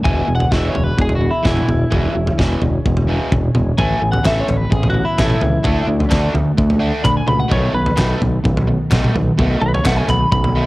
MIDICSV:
0, 0, Header, 1, 6, 480
1, 0, Start_track
1, 0, Key_signature, 4, "major"
1, 0, Tempo, 466563
1, 58, Time_signature, 4, 2, 24, 8
1, 10970, End_track
2, 0, Start_track
2, 0, Title_t, "Clean electric guitar"
2, 0, Program_c, 0, 27
2, 47, Note_on_c, 0, 80, 92
2, 361, Note_off_c, 0, 80, 0
2, 365, Note_on_c, 0, 78, 79
2, 533, Note_off_c, 0, 78, 0
2, 533, Note_on_c, 0, 76, 83
2, 717, Note_off_c, 0, 76, 0
2, 717, Note_on_c, 0, 73, 82
2, 860, Note_off_c, 0, 73, 0
2, 860, Note_on_c, 0, 71, 75
2, 1016, Note_off_c, 0, 71, 0
2, 1043, Note_on_c, 0, 68, 89
2, 1182, Note_off_c, 0, 68, 0
2, 1186, Note_on_c, 0, 66, 76
2, 1339, Note_off_c, 0, 66, 0
2, 1344, Note_on_c, 0, 64, 71
2, 1493, Note_off_c, 0, 64, 0
2, 1505, Note_on_c, 0, 64, 88
2, 2435, Note_off_c, 0, 64, 0
2, 3892, Note_on_c, 0, 80, 93
2, 4208, Note_off_c, 0, 80, 0
2, 4237, Note_on_c, 0, 78, 73
2, 4385, Note_off_c, 0, 78, 0
2, 4391, Note_on_c, 0, 76, 82
2, 4530, Note_on_c, 0, 73, 84
2, 4542, Note_off_c, 0, 76, 0
2, 4700, Note_off_c, 0, 73, 0
2, 4700, Note_on_c, 0, 71, 76
2, 4848, Note_off_c, 0, 71, 0
2, 4848, Note_on_c, 0, 68, 84
2, 5010, Note_off_c, 0, 68, 0
2, 5039, Note_on_c, 0, 66, 84
2, 5186, Note_off_c, 0, 66, 0
2, 5193, Note_on_c, 0, 64, 84
2, 5332, Note_off_c, 0, 64, 0
2, 5344, Note_on_c, 0, 64, 88
2, 6273, Note_off_c, 0, 64, 0
2, 7252, Note_on_c, 0, 83, 97
2, 7372, Note_off_c, 0, 83, 0
2, 7378, Note_on_c, 0, 80, 86
2, 7488, Note_off_c, 0, 80, 0
2, 7488, Note_on_c, 0, 83, 79
2, 7609, Note_off_c, 0, 83, 0
2, 7611, Note_on_c, 0, 78, 90
2, 7731, Note_off_c, 0, 78, 0
2, 7735, Note_on_c, 0, 73, 86
2, 7965, Note_off_c, 0, 73, 0
2, 7969, Note_on_c, 0, 71, 90
2, 8438, Note_off_c, 0, 71, 0
2, 9892, Note_on_c, 0, 71, 91
2, 10011, Note_off_c, 0, 71, 0
2, 10022, Note_on_c, 0, 73, 89
2, 10136, Note_off_c, 0, 73, 0
2, 10153, Note_on_c, 0, 78, 82
2, 10257, Note_off_c, 0, 78, 0
2, 10257, Note_on_c, 0, 80, 98
2, 10374, Note_off_c, 0, 80, 0
2, 10389, Note_on_c, 0, 83, 86
2, 10606, Note_off_c, 0, 83, 0
2, 10619, Note_on_c, 0, 83, 97
2, 10970, Note_off_c, 0, 83, 0
2, 10970, End_track
3, 0, Start_track
3, 0, Title_t, "Transistor combo organ"
3, 0, Program_c, 1, 18
3, 42, Note_on_c, 1, 68, 67
3, 46, Note_on_c, 1, 59, 59
3, 49, Note_on_c, 1, 52, 63
3, 1956, Note_off_c, 1, 59, 0
3, 1976, Note_on_c, 1, 61, 55
3, 3856, Note_off_c, 1, 68, 0
3, 3860, Note_off_c, 1, 52, 0
3, 3880, Note_off_c, 1, 61, 0
3, 3887, Note_on_c, 1, 59, 65
3, 3892, Note_on_c, 1, 49, 60
3, 3899, Note_on_c, 1, 57, 55
3, 5794, Note_off_c, 1, 59, 0
3, 5797, Note_off_c, 1, 49, 0
3, 5828, Note_on_c, 1, 66, 71
3, 5842, Note_on_c, 1, 50, 61
3, 7723, Note_off_c, 1, 66, 0
3, 7730, Note_off_c, 1, 50, 0
3, 7736, Note_on_c, 1, 51, 61
3, 7739, Note_on_c, 1, 59, 65
3, 10970, Note_off_c, 1, 51, 0
3, 10970, Note_off_c, 1, 57, 0
3, 10970, Note_off_c, 1, 59, 0
3, 10970, End_track
4, 0, Start_track
4, 0, Title_t, "Overdriven electric guitar"
4, 0, Program_c, 2, 29
4, 42, Note_on_c, 2, 40, 78
4, 49, Note_on_c, 2, 47, 90
4, 51, Note_on_c, 2, 52, 98
4, 275, Note_off_c, 2, 47, 0
4, 276, Note_off_c, 2, 40, 0
4, 281, Note_off_c, 2, 52, 0
4, 286, Note_on_c, 2, 40, 66
4, 287, Note_on_c, 2, 47, 79
4, 509, Note_off_c, 2, 40, 0
4, 509, Note_off_c, 2, 47, 0
4, 525, Note_on_c, 2, 40, 75
4, 532, Note_on_c, 2, 47, 84
4, 535, Note_on_c, 2, 52, 90
4, 758, Note_off_c, 2, 40, 0
4, 762, Note_off_c, 2, 47, 0
4, 763, Note_off_c, 2, 52, 0
4, 769, Note_on_c, 2, 40, 64
4, 772, Note_on_c, 2, 47, 65
4, 991, Note_off_c, 2, 40, 0
4, 993, Note_off_c, 2, 47, 0
4, 1004, Note_on_c, 2, 40, 63
4, 1004, Note_on_c, 2, 47, 77
4, 1229, Note_off_c, 2, 40, 0
4, 1229, Note_off_c, 2, 47, 0
4, 1244, Note_on_c, 2, 40, 67
4, 1245, Note_on_c, 2, 47, 79
4, 1461, Note_off_c, 2, 40, 0
4, 1464, Note_off_c, 2, 47, 0
4, 1473, Note_on_c, 2, 40, 88
4, 1476, Note_on_c, 2, 47, 82
4, 1484, Note_on_c, 2, 52, 89
4, 1708, Note_off_c, 2, 40, 0
4, 1712, Note_off_c, 2, 47, 0
4, 1718, Note_off_c, 2, 52, 0
4, 1721, Note_on_c, 2, 40, 65
4, 1724, Note_on_c, 2, 47, 70
4, 1947, Note_off_c, 2, 40, 0
4, 1949, Note_off_c, 2, 47, 0
4, 1958, Note_on_c, 2, 40, 87
4, 1961, Note_on_c, 2, 47, 84
4, 1967, Note_on_c, 2, 52, 97
4, 2196, Note_off_c, 2, 40, 0
4, 2197, Note_off_c, 2, 47, 0
4, 2200, Note_off_c, 2, 52, 0
4, 2211, Note_on_c, 2, 47, 72
4, 2213, Note_on_c, 2, 40, 66
4, 2433, Note_off_c, 2, 47, 0
4, 2434, Note_off_c, 2, 40, 0
4, 2446, Note_on_c, 2, 40, 82
4, 2453, Note_on_c, 2, 47, 80
4, 2461, Note_on_c, 2, 52, 90
4, 2680, Note_off_c, 2, 40, 0
4, 2684, Note_off_c, 2, 47, 0
4, 2687, Note_off_c, 2, 52, 0
4, 2692, Note_on_c, 2, 40, 64
4, 2695, Note_on_c, 2, 47, 66
4, 2913, Note_off_c, 2, 40, 0
4, 2915, Note_off_c, 2, 47, 0
4, 2939, Note_on_c, 2, 40, 67
4, 2942, Note_on_c, 2, 47, 73
4, 3148, Note_off_c, 2, 40, 0
4, 3154, Note_off_c, 2, 47, 0
4, 3161, Note_on_c, 2, 40, 84
4, 3166, Note_on_c, 2, 47, 90
4, 3175, Note_on_c, 2, 52, 100
4, 3397, Note_off_c, 2, 40, 0
4, 3400, Note_off_c, 2, 47, 0
4, 3404, Note_off_c, 2, 52, 0
4, 3417, Note_on_c, 2, 40, 60
4, 3419, Note_on_c, 2, 47, 77
4, 3636, Note_off_c, 2, 40, 0
4, 3637, Note_off_c, 2, 47, 0
4, 3651, Note_on_c, 2, 40, 66
4, 3654, Note_on_c, 2, 47, 70
4, 3873, Note_off_c, 2, 40, 0
4, 3874, Note_off_c, 2, 47, 0
4, 3893, Note_on_c, 2, 45, 81
4, 3895, Note_on_c, 2, 52, 87
4, 3899, Note_on_c, 2, 57, 89
4, 4113, Note_off_c, 2, 45, 0
4, 4121, Note_off_c, 2, 52, 0
4, 4125, Note_on_c, 2, 45, 64
4, 4126, Note_off_c, 2, 57, 0
4, 4133, Note_on_c, 2, 52, 77
4, 4350, Note_off_c, 2, 45, 0
4, 4354, Note_off_c, 2, 52, 0
4, 4368, Note_on_c, 2, 45, 76
4, 4375, Note_on_c, 2, 52, 93
4, 4380, Note_on_c, 2, 57, 91
4, 4597, Note_off_c, 2, 45, 0
4, 4600, Note_off_c, 2, 52, 0
4, 4607, Note_off_c, 2, 57, 0
4, 4610, Note_on_c, 2, 45, 65
4, 4613, Note_on_c, 2, 52, 67
4, 4832, Note_off_c, 2, 45, 0
4, 4833, Note_off_c, 2, 52, 0
4, 4843, Note_on_c, 2, 45, 64
4, 4848, Note_on_c, 2, 52, 74
4, 5068, Note_off_c, 2, 45, 0
4, 5071, Note_off_c, 2, 52, 0
4, 5081, Note_on_c, 2, 45, 65
4, 5087, Note_on_c, 2, 52, 69
4, 5307, Note_off_c, 2, 45, 0
4, 5310, Note_off_c, 2, 52, 0
4, 5327, Note_on_c, 2, 45, 81
4, 5336, Note_on_c, 2, 52, 89
4, 5338, Note_on_c, 2, 57, 98
4, 5548, Note_off_c, 2, 45, 0
4, 5554, Note_off_c, 2, 52, 0
4, 5560, Note_on_c, 2, 45, 63
4, 5565, Note_off_c, 2, 57, 0
4, 5566, Note_on_c, 2, 52, 73
4, 5786, Note_off_c, 2, 45, 0
4, 5789, Note_off_c, 2, 52, 0
4, 5793, Note_on_c, 2, 50, 84
4, 5801, Note_on_c, 2, 57, 99
4, 5803, Note_on_c, 2, 62, 95
4, 6025, Note_off_c, 2, 50, 0
4, 6031, Note_off_c, 2, 57, 0
4, 6038, Note_off_c, 2, 62, 0
4, 6038, Note_on_c, 2, 50, 61
4, 6044, Note_on_c, 2, 57, 74
4, 6260, Note_off_c, 2, 50, 0
4, 6268, Note_off_c, 2, 57, 0
4, 6273, Note_on_c, 2, 50, 82
4, 6282, Note_on_c, 2, 57, 91
4, 6285, Note_on_c, 2, 62, 99
4, 6510, Note_off_c, 2, 50, 0
4, 6514, Note_off_c, 2, 57, 0
4, 6518, Note_off_c, 2, 62, 0
4, 6522, Note_on_c, 2, 50, 70
4, 6526, Note_on_c, 2, 57, 71
4, 6747, Note_off_c, 2, 50, 0
4, 6749, Note_off_c, 2, 57, 0
4, 6765, Note_on_c, 2, 57, 83
4, 6766, Note_on_c, 2, 50, 74
4, 6976, Note_off_c, 2, 50, 0
4, 6981, Note_off_c, 2, 57, 0
4, 6988, Note_on_c, 2, 50, 81
4, 6993, Note_on_c, 2, 57, 93
4, 6997, Note_on_c, 2, 62, 107
4, 7218, Note_off_c, 2, 50, 0
4, 7225, Note_off_c, 2, 57, 0
4, 7230, Note_on_c, 2, 50, 74
4, 7234, Note_off_c, 2, 62, 0
4, 7237, Note_on_c, 2, 57, 76
4, 7460, Note_off_c, 2, 50, 0
4, 7464, Note_off_c, 2, 57, 0
4, 7475, Note_on_c, 2, 50, 63
4, 7477, Note_on_c, 2, 57, 80
4, 7697, Note_off_c, 2, 57, 0
4, 7701, Note_off_c, 2, 50, 0
4, 7701, Note_on_c, 2, 47, 93
4, 7705, Note_on_c, 2, 51, 96
4, 7710, Note_on_c, 2, 57, 93
4, 7937, Note_off_c, 2, 47, 0
4, 7942, Note_off_c, 2, 51, 0
4, 7949, Note_off_c, 2, 57, 0
4, 7949, Note_on_c, 2, 47, 67
4, 7955, Note_on_c, 2, 51, 76
4, 8176, Note_off_c, 2, 47, 0
4, 8182, Note_off_c, 2, 51, 0
4, 8188, Note_on_c, 2, 47, 88
4, 8195, Note_on_c, 2, 51, 98
4, 8201, Note_on_c, 2, 57, 104
4, 8420, Note_off_c, 2, 47, 0
4, 8426, Note_off_c, 2, 51, 0
4, 8432, Note_on_c, 2, 47, 66
4, 8435, Note_off_c, 2, 57, 0
4, 8439, Note_on_c, 2, 51, 73
4, 8661, Note_off_c, 2, 47, 0
4, 8664, Note_off_c, 2, 51, 0
4, 8680, Note_on_c, 2, 47, 72
4, 8682, Note_on_c, 2, 51, 77
4, 8905, Note_off_c, 2, 47, 0
4, 8905, Note_off_c, 2, 51, 0
4, 8922, Note_on_c, 2, 47, 73
4, 8926, Note_on_c, 2, 51, 78
4, 9145, Note_off_c, 2, 47, 0
4, 9147, Note_off_c, 2, 51, 0
4, 9156, Note_on_c, 2, 47, 97
4, 9170, Note_on_c, 2, 57, 98
4, 9172, Note_on_c, 2, 51, 92
4, 9392, Note_off_c, 2, 47, 0
4, 9396, Note_off_c, 2, 51, 0
4, 9399, Note_off_c, 2, 57, 0
4, 9408, Note_on_c, 2, 47, 73
4, 9409, Note_on_c, 2, 51, 82
4, 9628, Note_off_c, 2, 47, 0
4, 9629, Note_off_c, 2, 51, 0
4, 9645, Note_on_c, 2, 47, 91
4, 9653, Note_on_c, 2, 51, 96
4, 9660, Note_on_c, 2, 57, 105
4, 9877, Note_off_c, 2, 47, 0
4, 9881, Note_off_c, 2, 51, 0
4, 9884, Note_off_c, 2, 57, 0
4, 9889, Note_on_c, 2, 47, 80
4, 9902, Note_on_c, 2, 51, 80
4, 10109, Note_off_c, 2, 47, 0
4, 10116, Note_off_c, 2, 51, 0
4, 10125, Note_on_c, 2, 47, 86
4, 10129, Note_on_c, 2, 51, 89
4, 10136, Note_on_c, 2, 57, 92
4, 10357, Note_off_c, 2, 47, 0
4, 10359, Note_off_c, 2, 51, 0
4, 10362, Note_off_c, 2, 57, 0
4, 10371, Note_on_c, 2, 47, 72
4, 10374, Note_on_c, 2, 51, 73
4, 10591, Note_off_c, 2, 47, 0
4, 10592, Note_off_c, 2, 51, 0
4, 10612, Note_on_c, 2, 47, 67
4, 10620, Note_on_c, 2, 51, 74
4, 10831, Note_off_c, 2, 47, 0
4, 10835, Note_off_c, 2, 51, 0
4, 10855, Note_on_c, 2, 47, 96
4, 10863, Note_on_c, 2, 57, 102
4, 10864, Note_on_c, 2, 51, 90
4, 10970, Note_off_c, 2, 47, 0
4, 10970, Note_off_c, 2, 51, 0
4, 10970, Note_off_c, 2, 57, 0
4, 10970, End_track
5, 0, Start_track
5, 0, Title_t, "Fingered electric bass"
5, 0, Program_c, 3, 33
5, 54, Note_on_c, 3, 28, 89
5, 219, Note_off_c, 3, 28, 0
5, 290, Note_on_c, 3, 28, 81
5, 457, Note_off_c, 3, 28, 0
5, 532, Note_on_c, 3, 28, 87
5, 698, Note_off_c, 3, 28, 0
5, 773, Note_on_c, 3, 28, 85
5, 939, Note_off_c, 3, 28, 0
5, 1011, Note_on_c, 3, 28, 92
5, 1341, Note_off_c, 3, 28, 0
5, 1489, Note_on_c, 3, 28, 86
5, 1657, Note_off_c, 3, 28, 0
5, 1726, Note_on_c, 3, 28, 81
5, 1895, Note_off_c, 3, 28, 0
5, 1976, Note_on_c, 3, 28, 89
5, 2141, Note_off_c, 3, 28, 0
5, 2209, Note_on_c, 3, 28, 77
5, 2377, Note_off_c, 3, 28, 0
5, 2457, Note_on_c, 3, 28, 86
5, 2622, Note_off_c, 3, 28, 0
5, 2689, Note_on_c, 3, 28, 75
5, 2857, Note_off_c, 3, 28, 0
5, 2936, Note_on_c, 3, 28, 88
5, 3265, Note_off_c, 3, 28, 0
5, 3412, Note_on_c, 3, 28, 87
5, 3579, Note_off_c, 3, 28, 0
5, 3654, Note_on_c, 3, 28, 79
5, 3820, Note_off_c, 3, 28, 0
5, 3892, Note_on_c, 3, 33, 84
5, 4058, Note_off_c, 3, 33, 0
5, 4134, Note_on_c, 3, 33, 80
5, 4300, Note_off_c, 3, 33, 0
5, 4375, Note_on_c, 3, 33, 85
5, 4540, Note_off_c, 3, 33, 0
5, 4618, Note_on_c, 3, 33, 79
5, 4782, Note_off_c, 3, 33, 0
5, 4853, Note_on_c, 3, 33, 93
5, 5182, Note_off_c, 3, 33, 0
5, 5336, Note_on_c, 3, 33, 86
5, 5501, Note_off_c, 3, 33, 0
5, 5572, Note_on_c, 3, 37, 85
5, 5738, Note_off_c, 3, 37, 0
5, 5814, Note_on_c, 3, 38, 91
5, 5979, Note_off_c, 3, 38, 0
5, 6043, Note_on_c, 3, 38, 80
5, 6212, Note_off_c, 3, 38, 0
5, 6288, Note_on_c, 3, 38, 94
5, 6455, Note_off_c, 3, 38, 0
5, 6525, Note_on_c, 3, 38, 82
5, 6693, Note_off_c, 3, 38, 0
5, 6771, Note_on_c, 3, 38, 96
5, 7100, Note_off_c, 3, 38, 0
5, 7252, Note_on_c, 3, 38, 85
5, 7417, Note_off_c, 3, 38, 0
5, 7486, Note_on_c, 3, 37, 83
5, 7653, Note_off_c, 3, 37, 0
5, 7729, Note_on_c, 3, 35, 93
5, 7895, Note_off_c, 3, 35, 0
5, 7964, Note_on_c, 3, 35, 87
5, 8132, Note_off_c, 3, 35, 0
5, 8213, Note_on_c, 3, 35, 93
5, 8378, Note_off_c, 3, 35, 0
5, 8452, Note_on_c, 3, 35, 87
5, 8617, Note_off_c, 3, 35, 0
5, 8694, Note_on_c, 3, 35, 91
5, 9021, Note_off_c, 3, 35, 0
5, 9174, Note_on_c, 3, 35, 98
5, 9338, Note_off_c, 3, 35, 0
5, 9412, Note_on_c, 3, 35, 81
5, 9577, Note_off_c, 3, 35, 0
5, 9660, Note_on_c, 3, 35, 91
5, 9822, Note_off_c, 3, 35, 0
5, 9894, Note_on_c, 3, 35, 90
5, 10058, Note_off_c, 3, 35, 0
5, 10139, Note_on_c, 3, 35, 96
5, 10302, Note_off_c, 3, 35, 0
5, 10370, Note_on_c, 3, 35, 88
5, 10536, Note_off_c, 3, 35, 0
5, 10616, Note_on_c, 3, 35, 96
5, 10944, Note_off_c, 3, 35, 0
5, 10970, End_track
6, 0, Start_track
6, 0, Title_t, "Drums"
6, 55, Note_on_c, 9, 36, 104
6, 56, Note_on_c, 9, 43, 80
6, 158, Note_off_c, 9, 36, 0
6, 159, Note_off_c, 9, 43, 0
6, 415, Note_on_c, 9, 43, 78
6, 517, Note_off_c, 9, 43, 0
6, 534, Note_on_c, 9, 36, 94
6, 537, Note_on_c, 9, 38, 67
6, 637, Note_off_c, 9, 36, 0
6, 640, Note_off_c, 9, 38, 0
6, 772, Note_on_c, 9, 43, 78
6, 875, Note_off_c, 9, 43, 0
6, 1014, Note_on_c, 9, 36, 111
6, 1117, Note_off_c, 9, 36, 0
6, 1123, Note_on_c, 9, 43, 80
6, 1123, Note_on_c, 9, 47, 70
6, 1226, Note_off_c, 9, 43, 0
6, 1226, Note_off_c, 9, 47, 0
6, 1489, Note_on_c, 9, 47, 71
6, 1494, Note_on_c, 9, 36, 107
6, 1496, Note_on_c, 9, 38, 72
6, 1592, Note_off_c, 9, 47, 0
6, 1596, Note_off_c, 9, 36, 0
6, 1599, Note_off_c, 9, 38, 0
6, 1612, Note_on_c, 9, 47, 74
6, 1715, Note_off_c, 9, 47, 0
6, 1733, Note_on_c, 9, 43, 76
6, 1733, Note_on_c, 9, 47, 72
6, 1836, Note_off_c, 9, 43, 0
6, 1836, Note_off_c, 9, 47, 0
6, 1972, Note_on_c, 9, 43, 77
6, 1976, Note_on_c, 9, 36, 100
6, 2075, Note_off_c, 9, 43, 0
6, 2079, Note_off_c, 9, 36, 0
6, 2338, Note_on_c, 9, 43, 80
6, 2441, Note_off_c, 9, 43, 0
6, 2457, Note_on_c, 9, 36, 96
6, 2468, Note_on_c, 9, 38, 75
6, 2560, Note_off_c, 9, 36, 0
6, 2570, Note_off_c, 9, 38, 0
6, 2691, Note_on_c, 9, 43, 77
6, 2794, Note_off_c, 9, 43, 0
6, 2938, Note_on_c, 9, 36, 103
6, 3040, Note_off_c, 9, 36, 0
6, 3052, Note_on_c, 9, 43, 78
6, 3155, Note_off_c, 9, 43, 0
6, 3416, Note_on_c, 9, 36, 102
6, 3416, Note_on_c, 9, 47, 76
6, 3519, Note_off_c, 9, 36, 0
6, 3519, Note_off_c, 9, 47, 0
6, 3650, Note_on_c, 9, 43, 78
6, 3650, Note_on_c, 9, 47, 74
6, 3753, Note_off_c, 9, 43, 0
6, 3753, Note_off_c, 9, 47, 0
6, 3889, Note_on_c, 9, 43, 77
6, 3895, Note_on_c, 9, 36, 101
6, 3992, Note_off_c, 9, 43, 0
6, 3998, Note_off_c, 9, 36, 0
6, 4254, Note_on_c, 9, 43, 82
6, 4356, Note_off_c, 9, 43, 0
6, 4373, Note_on_c, 9, 39, 85
6, 4377, Note_on_c, 9, 36, 98
6, 4381, Note_on_c, 9, 38, 76
6, 4476, Note_off_c, 9, 39, 0
6, 4480, Note_off_c, 9, 36, 0
6, 4484, Note_off_c, 9, 38, 0
6, 4616, Note_on_c, 9, 39, 56
6, 4616, Note_on_c, 9, 43, 79
6, 4719, Note_off_c, 9, 39, 0
6, 4719, Note_off_c, 9, 43, 0
6, 4856, Note_on_c, 9, 36, 102
6, 4959, Note_off_c, 9, 36, 0
6, 4971, Note_on_c, 9, 43, 80
6, 4971, Note_on_c, 9, 47, 75
6, 5073, Note_off_c, 9, 43, 0
6, 5073, Note_off_c, 9, 47, 0
6, 5333, Note_on_c, 9, 47, 78
6, 5335, Note_on_c, 9, 36, 99
6, 5337, Note_on_c, 9, 39, 74
6, 5340, Note_on_c, 9, 38, 80
6, 5436, Note_off_c, 9, 47, 0
6, 5438, Note_off_c, 9, 36, 0
6, 5440, Note_off_c, 9, 39, 0
6, 5443, Note_off_c, 9, 38, 0
6, 5453, Note_on_c, 9, 47, 77
6, 5556, Note_off_c, 9, 47, 0
6, 5570, Note_on_c, 9, 43, 81
6, 5570, Note_on_c, 9, 47, 76
6, 5673, Note_off_c, 9, 43, 0
6, 5673, Note_off_c, 9, 47, 0
6, 5804, Note_on_c, 9, 43, 85
6, 5813, Note_on_c, 9, 36, 108
6, 5907, Note_off_c, 9, 43, 0
6, 5916, Note_off_c, 9, 36, 0
6, 6175, Note_on_c, 9, 43, 81
6, 6278, Note_off_c, 9, 43, 0
6, 6288, Note_on_c, 9, 39, 77
6, 6293, Note_on_c, 9, 36, 103
6, 6296, Note_on_c, 9, 38, 73
6, 6391, Note_off_c, 9, 39, 0
6, 6396, Note_off_c, 9, 36, 0
6, 6399, Note_off_c, 9, 38, 0
6, 6532, Note_on_c, 9, 43, 79
6, 6635, Note_off_c, 9, 43, 0
6, 6773, Note_on_c, 9, 36, 107
6, 6876, Note_off_c, 9, 36, 0
6, 6893, Note_on_c, 9, 43, 81
6, 6996, Note_off_c, 9, 43, 0
6, 7244, Note_on_c, 9, 47, 79
6, 7251, Note_on_c, 9, 36, 107
6, 7255, Note_on_c, 9, 39, 81
6, 7347, Note_off_c, 9, 47, 0
6, 7354, Note_off_c, 9, 36, 0
6, 7358, Note_off_c, 9, 39, 0
6, 7486, Note_on_c, 9, 43, 83
6, 7486, Note_on_c, 9, 47, 72
6, 7589, Note_off_c, 9, 43, 0
6, 7589, Note_off_c, 9, 47, 0
6, 7731, Note_on_c, 9, 43, 81
6, 7732, Note_on_c, 9, 36, 109
6, 7834, Note_off_c, 9, 43, 0
6, 7835, Note_off_c, 9, 36, 0
6, 8089, Note_on_c, 9, 43, 83
6, 8192, Note_off_c, 9, 43, 0
6, 8207, Note_on_c, 9, 39, 92
6, 8212, Note_on_c, 9, 36, 102
6, 8218, Note_on_c, 9, 38, 74
6, 8309, Note_off_c, 9, 39, 0
6, 8315, Note_off_c, 9, 36, 0
6, 8320, Note_off_c, 9, 38, 0
6, 8454, Note_on_c, 9, 43, 84
6, 8557, Note_off_c, 9, 43, 0
6, 8696, Note_on_c, 9, 36, 113
6, 8798, Note_off_c, 9, 36, 0
6, 8819, Note_on_c, 9, 43, 86
6, 8819, Note_on_c, 9, 47, 71
6, 8922, Note_off_c, 9, 43, 0
6, 8922, Note_off_c, 9, 47, 0
6, 9169, Note_on_c, 9, 39, 98
6, 9175, Note_on_c, 9, 36, 112
6, 9178, Note_on_c, 9, 47, 74
6, 9185, Note_on_c, 9, 38, 75
6, 9272, Note_off_c, 9, 39, 0
6, 9278, Note_off_c, 9, 36, 0
6, 9281, Note_off_c, 9, 47, 0
6, 9288, Note_off_c, 9, 38, 0
6, 9302, Note_on_c, 9, 47, 86
6, 9405, Note_off_c, 9, 47, 0
6, 9419, Note_on_c, 9, 43, 83
6, 9419, Note_on_c, 9, 47, 77
6, 9522, Note_off_c, 9, 43, 0
6, 9522, Note_off_c, 9, 47, 0
6, 9657, Note_on_c, 9, 36, 109
6, 9661, Note_on_c, 9, 43, 86
6, 9760, Note_off_c, 9, 36, 0
6, 9764, Note_off_c, 9, 43, 0
6, 10026, Note_on_c, 9, 43, 82
6, 10129, Note_off_c, 9, 43, 0
6, 10137, Note_on_c, 9, 39, 109
6, 10139, Note_on_c, 9, 36, 100
6, 10147, Note_on_c, 9, 38, 73
6, 10239, Note_off_c, 9, 39, 0
6, 10242, Note_off_c, 9, 36, 0
6, 10250, Note_off_c, 9, 38, 0
6, 10380, Note_on_c, 9, 43, 78
6, 10381, Note_on_c, 9, 39, 72
6, 10483, Note_off_c, 9, 43, 0
6, 10484, Note_off_c, 9, 39, 0
6, 10619, Note_on_c, 9, 36, 116
6, 10722, Note_off_c, 9, 36, 0
6, 10741, Note_on_c, 9, 43, 83
6, 10844, Note_off_c, 9, 43, 0
6, 10970, End_track
0, 0, End_of_file